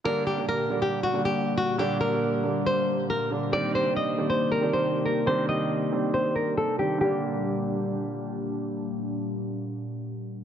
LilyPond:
<<
  \new Staff \with { instrumentName = "Nylon-string guitar" } { \time 4/4 \key g \minor \tempo 4 = 138 bes'8 g'8 bes'8. g'8 fis'8 g'8. fis'8 | g'8 bes'4. c''4 bes'8 r8 | d''8 c''8 ees''8. c''8 bes'8 c''8. bes'8 | c''8 ees''4. c''8 bes'8 a'8 g'8 |
g'2. r4 | r1 | }
  \new Staff \with { instrumentName = "Grand piano" } { \clef bass \time 4/4 \key g \minor <d g bes d'>8 r16 <d g bes d'>8 r16 <d g bes d'>8. r16 <d g bes d'>4 r8 | <d g bes d'>4 r8 <d g bes d'>4~ <d g bes d'>16 r8. <d g bes d'>16 r16 | <ees g c' d'>8 r16 <ees g c' d'>8 r16 <ees g c' d'>8. r16 <ees g c' d'>4 r8 | <ees g c' d'>4 r8 <ees g c' d'>4~ <ees g c' d'>16 r8. <ees g c' d'>16 r16 |
<d g bes d'>1~ | <d g bes d'>1 | }
  \new Staff \with { instrumentName = "Ambient pad" } { \clef bass \time 4/4 \key g \minor << { <bes g'>1~ | <bes g'>1~ | <bes g'>1~ | <bes g'>1 |
<bes, g d' g'>1~ | <bes, g d' g'>1 | } \\ { <bes, g>1~ | <bes, g>1 | <c ees>1~ | <c ees>1 |
r1 | r1 | } >> }
>>